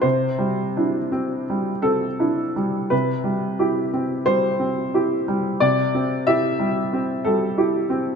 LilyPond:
\new Staff \with { instrumentName = "Upright piano" } { \time 4/4 \key c \major \tempo 4 = 90 << { c''2~ c''8 a'4. | b'2 c''2 | d''4 e''4. a'4. | } \\ { c8 g8 <d' e'>8 c'8 g8 c'8 <d' e'>8 g8 | c8 g8 <e' g'>8 c'8 g8 c'8 <e' g'>8 g8 | c8 c'8 <e' g'>8 g8 c'8 g8 <e' g'>8 c'8 | } >> }